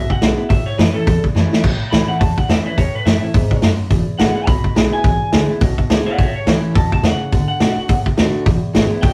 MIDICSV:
0, 0, Header, 1, 6, 480
1, 0, Start_track
1, 0, Key_signature, 3, "major"
1, 0, Tempo, 284360
1, 842, Time_signature, 4, 2, 24, 8
1, 15413, End_track
2, 0, Start_track
2, 0, Title_t, "Clean electric guitar"
2, 0, Program_c, 0, 27
2, 167, Note_on_c, 0, 78, 107
2, 822, Note_off_c, 0, 78, 0
2, 830, Note_on_c, 0, 76, 102
2, 1112, Note_off_c, 0, 76, 0
2, 1116, Note_on_c, 0, 73, 97
2, 1311, Note_off_c, 0, 73, 0
2, 1325, Note_on_c, 0, 71, 90
2, 1590, Note_on_c, 0, 69, 101
2, 1599, Note_off_c, 0, 71, 0
2, 2063, Note_off_c, 0, 69, 0
2, 3230, Note_on_c, 0, 83, 98
2, 3509, Note_off_c, 0, 83, 0
2, 3515, Note_on_c, 0, 78, 92
2, 3708, Note_off_c, 0, 78, 0
2, 3715, Note_on_c, 0, 81, 86
2, 4012, Note_off_c, 0, 81, 0
2, 4012, Note_on_c, 0, 78, 98
2, 4200, Note_off_c, 0, 78, 0
2, 4212, Note_on_c, 0, 76, 99
2, 4476, Note_on_c, 0, 71, 96
2, 4483, Note_off_c, 0, 76, 0
2, 4671, Note_off_c, 0, 71, 0
2, 4694, Note_on_c, 0, 73, 90
2, 4965, Note_off_c, 0, 73, 0
2, 4984, Note_on_c, 0, 71, 90
2, 5158, Note_on_c, 0, 76, 102
2, 5166, Note_off_c, 0, 71, 0
2, 6092, Note_off_c, 0, 76, 0
2, 7065, Note_on_c, 0, 78, 100
2, 7331, Note_off_c, 0, 78, 0
2, 7351, Note_on_c, 0, 78, 97
2, 7538, Note_off_c, 0, 78, 0
2, 7538, Note_on_c, 0, 83, 104
2, 8292, Note_off_c, 0, 83, 0
2, 8326, Note_on_c, 0, 80, 107
2, 9259, Note_off_c, 0, 80, 0
2, 10232, Note_on_c, 0, 74, 92
2, 10237, Note_on_c, 0, 78, 100
2, 10431, Note_off_c, 0, 78, 0
2, 10437, Note_off_c, 0, 74, 0
2, 10442, Note_on_c, 0, 73, 84
2, 10461, Note_on_c, 0, 76, 99
2, 10707, Note_off_c, 0, 73, 0
2, 10723, Note_off_c, 0, 76, 0
2, 10730, Note_on_c, 0, 73, 98
2, 10919, Note_off_c, 0, 73, 0
2, 11403, Note_on_c, 0, 81, 107
2, 11679, Note_off_c, 0, 81, 0
2, 11702, Note_on_c, 0, 81, 97
2, 11909, Note_off_c, 0, 81, 0
2, 11909, Note_on_c, 0, 78, 91
2, 12609, Note_off_c, 0, 78, 0
2, 12629, Note_on_c, 0, 78, 115
2, 13568, Note_off_c, 0, 78, 0
2, 15229, Note_on_c, 0, 79, 110
2, 15413, Note_off_c, 0, 79, 0
2, 15413, End_track
3, 0, Start_track
3, 0, Title_t, "Steel-string acoustic guitar"
3, 0, Program_c, 1, 25
3, 0, Note_on_c, 1, 47, 94
3, 354, Note_on_c, 1, 50, 92
3, 366, Note_on_c, 1, 56, 88
3, 378, Note_on_c, 1, 59, 94
3, 389, Note_on_c, 1, 64, 85
3, 609, Note_off_c, 1, 64, 0
3, 629, Note_on_c, 1, 64, 72
3, 631, Note_off_c, 1, 50, 0
3, 637, Note_off_c, 1, 56, 0
3, 643, Note_off_c, 1, 59, 0
3, 671, Note_on_c, 1, 59, 48
3, 806, Note_off_c, 1, 47, 0
3, 825, Note_off_c, 1, 64, 0
3, 835, Note_on_c, 1, 45, 78
3, 847, Note_off_c, 1, 59, 0
3, 1310, Note_on_c, 1, 52, 80
3, 1325, Note_on_c, 1, 57, 91
3, 1336, Note_on_c, 1, 61, 93
3, 1346, Note_on_c, 1, 64, 98
3, 1576, Note_off_c, 1, 64, 0
3, 1589, Note_off_c, 1, 52, 0
3, 1596, Note_on_c, 1, 64, 59
3, 1597, Note_off_c, 1, 57, 0
3, 1602, Note_off_c, 1, 61, 0
3, 1627, Note_on_c, 1, 61, 43
3, 1759, Note_off_c, 1, 45, 0
3, 1789, Note_off_c, 1, 64, 0
3, 1799, Note_on_c, 1, 40, 85
3, 1805, Note_off_c, 1, 61, 0
3, 2272, Note_on_c, 1, 52, 90
3, 2292, Note_on_c, 1, 57, 84
3, 2302, Note_on_c, 1, 61, 82
3, 2307, Note_on_c, 1, 64, 97
3, 2535, Note_off_c, 1, 64, 0
3, 2550, Note_off_c, 1, 52, 0
3, 2555, Note_on_c, 1, 64, 63
3, 2560, Note_off_c, 1, 57, 0
3, 2565, Note_off_c, 1, 61, 0
3, 2593, Note_on_c, 1, 61, 59
3, 2721, Note_off_c, 1, 40, 0
3, 2749, Note_off_c, 1, 64, 0
3, 2765, Note_on_c, 1, 45, 80
3, 2768, Note_off_c, 1, 61, 0
3, 3230, Note_on_c, 1, 52, 83
3, 3244, Note_on_c, 1, 57, 97
3, 3260, Note_on_c, 1, 61, 96
3, 3275, Note_on_c, 1, 64, 93
3, 3494, Note_off_c, 1, 64, 0
3, 3509, Note_off_c, 1, 52, 0
3, 3514, Note_on_c, 1, 64, 59
3, 3516, Note_off_c, 1, 57, 0
3, 3524, Note_off_c, 1, 61, 0
3, 3559, Note_on_c, 1, 61, 43
3, 3685, Note_off_c, 1, 45, 0
3, 3709, Note_off_c, 1, 64, 0
3, 3727, Note_on_c, 1, 40, 90
3, 3731, Note_off_c, 1, 61, 0
3, 4188, Note_on_c, 1, 52, 74
3, 4200, Note_on_c, 1, 57, 83
3, 4221, Note_on_c, 1, 61, 95
3, 4228, Note_on_c, 1, 64, 90
3, 4457, Note_off_c, 1, 64, 0
3, 4468, Note_off_c, 1, 52, 0
3, 4475, Note_off_c, 1, 57, 0
3, 4477, Note_on_c, 1, 64, 65
3, 4485, Note_off_c, 1, 61, 0
3, 4517, Note_on_c, 1, 61, 53
3, 4646, Note_off_c, 1, 40, 0
3, 4670, Note_off_c, 1, 64, 0
3, 4690, Note_off_c, 1, 61, 0
3, 4692, Note_on_c, 1, 45, 88
3, 5148, Note_on_c, 1, 52, 90
3, 5163, Note_on_c, 1, 57, 97
3, 5175, Note_on_c, 1, 61, 102
3, 5183, Note_on_c, 1, 64, 98
3, 5408, Note_off_c, 1, 64, 0
3, 5428, Note_on_c, 1, 64, 58
3, 5429, Note_off_c, 1, 52, 0
3, 5436, Note_off_c, 1, 57, 0
3, 5442, Note_off_c, 1, 61, 0
3, 5467, Note_on_c, 1, 61, 43
3, 5609, Note_off_c, 1, 45, 0
3, 5626, Note_off_c, 1, 64, 0
3, 5643, Note_on_c, 1, 44, 83
3, 5646, Note_off_c, 1, 61, 0
3, 6104, Note_off_c, 1, 44, 0
3, 6124, Note_on_c, 1, 42, 89
3, 6579, Note_off_c, 1, 42, 0
3, 6586, Note_on_c, 1, 40, 82
3, 7067, Note_on_c, 1, 50, 84
3, 7081, Note_on_c, 1, 56, 93
3, 7095, Note_on_c, 1, 59, 85
3, 7106, Note_on_c, 1, 64, 97
3, 7335, Note_off_c, 1, 64, 0
3, 7349, Note_off_c, 1, 50, 0
3, 7355, Note_on_c, 1, 64, 56
3, 7356, Note_off_c, 1, 56, 0
3, 7363, Note_off_c, 1, 59, 0
3, 7390, Note_on_c, 1, 59, 48
3, 7517, Note_off_c, 1, 40, 0
3, 7545, Note_on_c, 1, 47, 84
3, 7550, Note_off_c, 1, 64, 0
3, 7568, Note_off_c, 1, 59, 0
3, 8018, Note_on_c, 1, 50, 86
3, 8035, Note_on_c, 1, 56, 87
3, 8040, Note_on_c, 1, 59, 93
3, 8055, Note_on_c, 1, 64, 99
3, 8275, Note_off_c, 1, 64, 0
3, 8296, Note_on_c, 1, 64, 65
3, 8304, Note_off_c, 1, 50, 0
3, 8313, Note_off_c, 1, 56, 0
3, 8315, Note_off_c, 1, 59, 0
3, 8338, Note_on_c, 1, 59, 55
3, 8476, Note_off_c, 1, 47, 0
3, 8500, Note_off_c, 1, 64, 0
3, 8515, Note_on_c, 1, 40, 80
3, 8522, Note_off_c, 1, 59, 0
3, 8986, Note_on_c, 1, 50, 82
3, 9005, Note_on_c, 1, 56, 97
3, 9015, Note_on_c, 1, 59, 90
3, 9032, Note_on_c, 1, 64, 86
3, 9260, Note_off_c, 1, 64, 0
3, 9269, Note_off_c, 1, 50, 0
3, 9278, Note_off_c, 1, 56, 0
3, 9280, Note_on_c, 1, 64, 56
3, 9283, Note_off_c, 1, 59, 0
3, 9315, Note_on_c, 1, 59, 46
3, 9441, Note_off_c, 1, 40, 0
3, 9466, Note_on_c, 1, 47, 95
3, 9473, Note_off_c, 1, 64, 0
3, 9490, Note_off_c, 1, 59, 0
3, 9957, Note_on_c, 1, 50, 78
3, 9967, Note_on_c, 1, 56, 89
3, 9980, Note_on_c, 1, 59, 79
3, 9995, Note_on_c, 1, 64, 94
3, 10217, Note_off_c, 1, 64, 0
3, 10234, Note_off_c, 1, 50, 0
3, 10238, Note_on_c, 1, 64, 60
3, 10239, Note_off_c, 1, 56, 0
3, 10245, Note_off_c, 1, 59, 0
3, 10277, Note_on_c, 1, 59, 56
3, 10396, Note_off_c, 1, 47, 0
3, 10431, Note_off_c, 1, 64, 0
3, 10446, Note_on_c, 1, 45, 81
3, 10451, Note_off_c, 1, 59, 0
3, 10910, Note_on_c, 1, 52, 83
3, 10929, Note_on_c, 1, 57, 92
3, 10936, Note_on_c, 1, 61, 94
3, 10951, Note_on_c, 1, 64, 87
3, 11366, Note_off_c, 1, 45, 0
3, 11377, Note_off_c, 1, 52, 0
3, 11387, Note_off_c, 1, 57, 0
3, 11391, Note_off_c, 1, 61, 0
3, 11398, Note_off_c, 1, 64, 0
3, 11410, Note_on_c, 1, 47, 89
3, 11865, Note_off_c, 1, 47, 0
3, 11872, Note_on_c, 1, 49, 84
3, 12338, Note_off_c, 1, 49, 0
3, 12358, Note_on_c, 1, 50, 85
3, 12811, Note_off_c, 1, 50, 0
3, 12831, Note_on_c, 1, 50, 81
3, 12839, Note_on_c, 1, 57, 93
3, 12854, Note_on_c, 1, 62, 95
3, 12867, Note_on_c, 1, 66, 96
3, 13090, Note_off_c, 1, 66, 0
3, 13110, Note_off_c, 1, 50, 0
3, 13111, Note_on_c, 1, 66, 59
3, 13114, Note_off_c, 1, 57, 0
3, 13121, Note_off_c, 1, 62, 0
3, 13147, Note_on_c, 1, 62, 42
3, 13304, Note_on_c, 1, 45, 94
3, 13307, Note_off_c, 1, 66, 0
3, 13325, Note_off_c, 1, 62, 0
3, 13783, Note_on_c, 1, 50, 83
3, 13807, Note_on_c, 1, 57, 98
3, 13812, Note_on_c, 1, 62, 88
3, 13830, Note_on_c, 1, 66, 97
3, 14233, Note_off_c, 1, 45, 0
3, 14253, Note_off_c, 1, 50, 0
3, 14264, Note_off_c, 1, 57, 0
3, 14267, Note_off_c, 1, 62, 0
3, 14276, Note_off_c, 1, 66, 0
3, 14284, Note_on_c, 1, 40, 90
3, 14742, Note_on_c, 1, 50, 79
3, 14763, Note_on_c, 1, 56, 94
3, 14773, Note_on_c, 1, 59, 87
3, 14785, Note_on_c, 1, 64, 97
3, 15018, Note_off_c, 1, 64, 0
3, 15024, Note_off_c, 1, 50, 0
3, 15035, Note_off_c, 1, 56, 0
3, 15038, Note_on_c, 1, 64, 58
3, 15039, Note_off_c, 1, 59, 0
3, 15071, Note_on_c, 1, 59, 45
3, 15202, Note_off_c, 1, 40, 0
3, 15229, Note_off_c, 1, 64, 0
3, 15232, Note_on_c, 1, 47, 90
3, 15245, Note_off_c, 1, 59, 0
3, 15413, Note_off_c, 1, 47, 0
3, 15413, End_track
4, 0, Start_track
4, 0, Title_t, "Upright bass"
4, 0, Program_c, 2, 32
4, 359, Note_on_c, 2, 35, 97
4, 595, Note_off_c, 2, 35, 0
4, 849, Note_on_c, 2, 33, 87
4, 1081, Note_off_c, 2, 33, 0
4, 1321, Note_on_c, 2, 42, 105
4, 1556, Note_off_c, 2, 42, 0
4, 1812, Note_on_c, 2, 40, 103
4, 2042, Note_off_c, 2, 40, 0
4, 2275, Note_on_c, 2, 42, 106
4, 2513, Note_off_c, 2, 42, 0
4, 2761, Note_on_c, 2, 33, 90
4, 2996, Note_off_c, 2, 33, 0
4, 3240, Note_on_c, 2, 37, 92
4, 3476, Note_off_c, 2, 37, 0
4, 3727, Note_on_c, 2, 40, 99
4, 3960, Note_off_c, 2, 40, 0
4, 4192, Note_on_c, 2, 40, 103
4, 4431, Note_off_c, 2, 40, 0
4, 4692, Note_on_c, 2, 40, 94
4, 4923, Note_off_c, 2, 40, 0
4, 5152, Note_on_c, 2, 42, 97
4, 5391, Note_off_c, 2, 42, 0
4, 5640, Note_on_c, 2, 40, 96
4, 5876, Note_off_c, 2, 40, 0
4, 6113, Note_on_c, 2, 42, 93
4, 6352, Note_off_c, 2, 42, 0
4, 6593, Note_on_c, 2, 28, 93
4, 6833, Note_off_c, 2, 28, 0
4, 7063, Note_on_c, 2, 32, 96
4, 7307, Note_off_c, 2, 32, 0
4, 7554, Note_on_c, 2, 35, 94
4, 7794, Note_off_c, 2, 35, 0
4, 8026, Note_on_c, 2, 35, 96
4, 8269, Note_off_c, 2, 35, 0
4, 8513, Note_on_c, 2, 35, 91
4, 8752, Note_off_c, 2, 35, 0
4, 8990, Note_on_c, 2, 38, 94
4, 9231, Note_off_c, 2, 38, 0
4, 9471, Note_on_c, 2, 35, 105
4, 9712, Note_off_c, 2, 35, 0
4, 9952, Note_on_c, 2, 37, 95
4, 10192, Note_off_c, 2, 37, 0
4, 10443, Note_on_c, 2, 33, 97
4, 10678, Note_off_c, 2, 33, 0
4, 10907, Note_on_c, 2, 37, 99
4, 11149, Note_off_c, 2, 37, 0
4, 11399, Note_on_c, 2, 40, 90
4, 11636, Note_off_c, 2, 40, 0
4, 11853, Note_on_c, 2, 40, 102
4, 12100, Note_off_c, 2, 40, 0
4, 12363, Note_on_c, 2, 38, 91
4, 12597, Note_off_c, 2, 38, 0
4, 12831, Note_on_c, 2, 47, 89
4, 13071, Note_off_c, 2, 47, 0
4, 13319, Note_on_c, 2, 45, 101
4, 13555, Note_off_c, 2, 45, 0
4, 13809, Note_on_c, 2, 39, 101
4, 14040, Note_off_c, 2, 39, 0
4, 14280, Note_on_c, 2, 28, 91
4, 14515, Note_off_c, 2, 28, 0
4, 14754, Note_on_c, 2, 32, 95
4, 14991, Note_off_c, 2, 32, 0
4, 15244, Note_on_c, 2, 35, 99
4, 15413, Note_off_c, 2, 35, 0
4, 15413, End_track
5, 0, Start_track
5, 0, Title_t, "Muted upright bass strokes"
5, 170, Note_on_c, 9, 29, 69
5, 339, Note_off_c, 9, 29, 0
5, 649, Note_on_c, 9, 29, 76
5, 818, Note_off_c, 9, 29, 0
5, 1117, Note_on_c, 9, 29, 73
5, 1286, Note_off_c, 9, 29, 0
5, 1612, Note_on_c, 9, 29, 72
5, 1781, Note_off_c, 9, 29, 0
5, 2568, Note_on_c, 9, 29, 80
5, 2736, Note_off_c, 9, 29, 0
5, 3039, Note_on_c, 9, 29, 75
5, 3208, Note_off_c, 9, 29, 0
5, 3533, Note_on_c, 9, 29, 67
5, 3701, Note_off_c, 9, 29, 0
5, 5448, Note_on_c, 9, 29, 73
5, 5617, Note_off_c, 9, 29, 0
5, 6405, Note_on_c, 9, 29, 79
5, 6574, Note_off_c, 9, 29, 0
5, 6888, Note_on_c, 9, 29, 73
5, 7057, Note_off_c, 9, 29, 0
5, 7347, Note_on_c, 9, 29, 74
5, 7515, Note_off_c, 9, 29, 0
5, 7840, Note_on_c, 9, 29, 67
5, 8009, Note_off_c, 9, 29, 0
5, 8319, Note_on_c, 9, 29, 71
5, 8488, Note_off_c, 9, 29, 0
5, 9273, Note_on_c, 9, 29, 77
5, 9441, Note_off_c, 9, 29, 0
5, 10247, Note_on_c, 9, 29, 72
5, 10415, Note_off_c, 9, 29, 0
5, 10729, Note_on_c, 9, 29, 70
5, 10898, Note_off_c, 9, 29, 0
5, 11199, Note_on_c, 9, 29, 69
5, 11367, Note_off_c, 9, 29, 0
5, 12144, Note_on_c, 9, 29, 75
5, 12313, Note_off_c, 9, 29, 0
5, 13115, Note_on_c, 9, 29, 73
5, 13284, Note_off_c, 9, 29, 0
5, 13612, Note_on_c, 9, 29, 66
5, 13781, Note_off_c, 9, 29, 0
5, 14074, Note_on_c, 9, 29, 77
5, 14243, Note_off_c, 9, 29, 0
5, 14567, Note_on_c, 9, 29, 70
5, 14736, Note_off_c, 9, 29, 0
5, 15046, Note_on_c, 9, 29, 74
5, 15215, Note_off_c, 9, 29, 0
5, 15413, End_track
6, 0, Start_track
6, 0, Title_t, "Drums"
6, 169, Note_on_c, 9, 36, 91
6, 338, Note_off_c, 9, 36, 0
6, 367, Note_on_c, 9, 38, 98
6, 367, Note_on_c, 9, 46, 48
6, 535, Note_off_c, 9, 38, 0
6, 535, Note_off_c, 9, 46, 0
6, 843, Note_on_c, 9, 46, 52
6, 846, Note_on_c, 9, 36, 116
6, 1012, Note_off_c, 9, 46, 0
6, 1015, Note_off_c, 9, 36, 0
6, 1334, Note_on_c, 9, 38, 127
6, 1334, Note_on_c, 9, 46, 56
6, 1503, Note_off_c, 9, 38, 0
6, 1503, Note_off_c, 9, 46, 0
6, 1808, Note_on_c, 9, 36, 124
6, 1815, Note_on_c, 9, 46, 64
6, 1977, Note_off_c, 9, 36, 0
6, 1983, Note_off_c, 9, 46, 0
6, 2092, Note_on_c, 9, 36, 85
6, 2261, Note_off_c, 9, 36, 0
6, 2285, Note_on_c, 9, 38, 64
6, 2454, Note_off_c, 9, 38, 0
6, 2580, Note_on_c, 9, 38, 89
6, 2748, Note_off_c, 9, 38, 0
6, 2760, Note_on_c, 9, 49, 97
6, 2765, Note_on_c, 9, 36, 105
6, 2929, Note_off_c, 9, 49, 0
6, 2934, Note_off_c, 9, 36, 0
6, 3248, Note_on_c, 9, 38, 127
6, 3248, Note_on_c, 9, 46, 48
6, 3417, Note_off_c, 9, 38, 0
6, 3417, Note_off_c, 9, 46, 0
6, 3729, Note_on_c, 9, 36, 125
6, 3735, Note_on_c, 9, 46, 57
6, 3897, Note_off_c, 9, 36, 0
6, 3904, Note_off_c, 9, 46, 0
6, 4012, Note_on_c, 9, 36, 86
6, 4180, Note_off_c, 9, 36, 0
6, 4209, Note_on_c, 9, 38, 99
6, 4209, Note_on_c, 9, 46, 46
6, 4377, Note_off_c, 9, 38, 0
6, 4377, Note_off_c, 9, 46, 0
6, 4689, Note_on_c, 9, 36, 101
6, 4697, Note_on_c, 9, 46, 54
6, 4858, Note_off_c, 9, 36, 0
6, 4866, Note_off_c, 9, 46, 0
6, 5172, Note_on_c, 9, 38, 120
6, 5172, Note_on_c, 9, 46, 58
6, 5340, Note_off_c, 9, 38, 0
6, 5340, Note_off_c, 9, 46, 0
6, 5644, Note_on_c, 9, 36, 127
6, 5645, Note_on_c, 9, 46, 58
6, 5812, Note_off_c, 9, 36, 0
6, 5814, Note_off_c, 9, 46, 0
6, 5924, Note_on_c, 9, 36, 88
6, 6093, Note_off_c, 9, 36, 0
6, 6111, Note_on_c, 9, 38, 94
6, 6111, Note_on_c, 9, 46, 53
6, 6280, Note_off_c, 9, 38, 0
6, 6280, Note_off_c, 9, 46, 0
6, 6588, Note_on_c, 9, 46, 51
6, 6594, Note_on_c, 9, 36, 99
6, 6757, Note_off_c, 9, 46, 0
6, 6763, Note_off_c, 9, 36, 0
6, 7077, Note_on_c, 9, 38, 117
6, 7077, Note_on_c, 9, 46, 54
6, 7246, Note_off_c, 9, 38, 0
6, 7246, Note_off_c, 9, 46, 0
6, 7551, Note_on_c, 9, 36, 127
6, 7552, Note_on_c, 9, 46, 58
6, 7720, Note_off_c, 9, 36, 0
6, 7721, Note_off_c, 9, 46, 0
6, 7837, Note_on_c, 9, 36, 80
6, 8005, Note_off_c, 9, 36, 0
6, 8038, Note_on_c, 9, 38, 113
6, 8038, Note_on_c, 9, 46, 46
6, 8207, Note_off_c, 9, 38, 0
6, 8207, Note_off_c, 9, 46, 0
6, 8509, Note_on_c, 9, 46, 52
6, 8511, Note_on_c, 9, 36, 120
6, 8677, Note_off_c, 9, 46, 0
6, 8680, Note_off_c, 9, 36, 0
6, 8988, Note_on_c, 9, 38, 113
6, 8988, Note_on_c, 9, 46, 56
6, 9156, Note_off_c, 9, 38, 0
6, 9156, Note_off_c, 9, 46, 0
6, 9469, Note_on_c, 9, 46, 62
6, 9474, Note_on_c, 9, 36, 127
6, 9638, Note_off_c, 9, 46, 0
6, 9643, Note_off_c, 9, 36, 0
6, 9760, Note_on_c, 9, 36, 84
6, 9929, Note_off_c, 9, 36, 0
6, 9957, Note_on_c, 9, 38, 112
6, 9957, Note_on_c, 9, 46, 48
6, 10126, Note_off_c, 9, 38, 0
6, 10126, Note_off_c, 9, 46, 0
6, 10438, Note_on_c, 9, 46, 50
6, 10441, Note_on_c, 9, 36, 106
6, 10606, Note_off_c, 9, 46, 0
6, 10610, Note_off_c, 9, 36, 0
6, 10917, Note_on_c, 9, 38, 117
6, 10917, Note_on_c, 9, 46, 53
6, 11086, Note_off_c, 9, 38, 0
6, 11086, Note_off_c, 9, 46, 0
6, 11398, Note_on_c, 9, 46, 51
6, 11402, Note_on_c, 9, 36, 127
6, 11567, Note_off_c, 9, 46, 0
6, 11571, Note_off_c, 9, 36, 0
6, 11686, Note_on_c, 9, 36, 90
6, 11855, Note_off_c, 9, 36, 0
6, 11873, Note_on_c, 9, 38, 96
6, 11873, Note_on_c, 9, 46, 44
6, 12042, Note_off_c, 9, 38, 0
6, 12042, Note_off_c, 9, 46, 0
6, 12363, Note_on_c, 9, 46, 49
6, 12364, Note_on_c, 9, 36, 106
6, 12532, Note_off_c, 9, 46, 0
6, 12533, Note_off_c, 9, 36, 0
6, 12832, Note_on_c, 9, 38, 114
6, 12832, Note_on_c, 9, 46, 54
6, 13000, Note_off_c, 9, 38, 0
6, 13000, Note_off_c, 9, 46, 0
6, 13318, Note_on_c, 9, 46, 61
6, 13321, Note_on_c, 9, 36, 121
6, 13487, Note_off_c, 9, 46, 0
6, 13490, Note_off_c, 9, 36, 0
6, 13606, Note_on_c, 9, 36, 86
6, 13775, Note_off_c, 9, 36, 0
6, 13799, Note_on_c, 9, 38, 102
6, 13799, Note_on_c, 9, 46, 50
6, 13968, Note_off_c, 9, 38, 0
6, 13968, Note_off_c, 9, 46, 0
6, 14282, Note_on_c, 9, 46, 53
6, 14283, Note_on_c, 9, 36, 114
6, 14450, Note_off_c, 9, 46, 0
6, 14452, Note_off_c, 9, 36, 0
6, 14762, Note_on_c, 9, 38, 113
6, 14762, Note_on_c, 9, 46, 54
6, 14931, Note_off_c, 9, 38, 0
6, 14931, Note_off_c, 9, 46, 0
6, 15234, Note_on_c, 9, 46, 58
6, 15245, Note_on_c, 9, 36, 127
6, 15403, Note_off_c, 9, 46, 0
6, 15413, Note_off_c, 9, 36, 0
6, 15413, End_track
0, 0, End_of_file